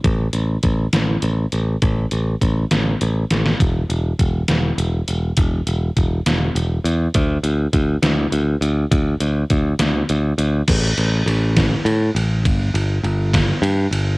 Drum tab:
CC |------------|------------|------------|------------|
RD |------------|------------|------------|------------|
HH |x-x-x-x-x-x-|x-x-x-x-x-x-|x-x-x-x-x-x-|x-x-x-x-x-x-|
SD |------o-----|------o---oo|------o-----|------o-----|
BD |o---o-------|o---o-------|o---o-------|o---o-------|

CC |------------|------------|x-----------|------------|
RD |------------|------------|x-x-x-x-x-x-|x-x-x-x-x-x-|
HH |x-x-x-x-x-x-|x-x-x-x-x-x-|------------|------------|
SD |------o-----|------o-----|------o-----|------o-----|
BD |o---o-------|o---o-------|o-----o-----|o-----o-----|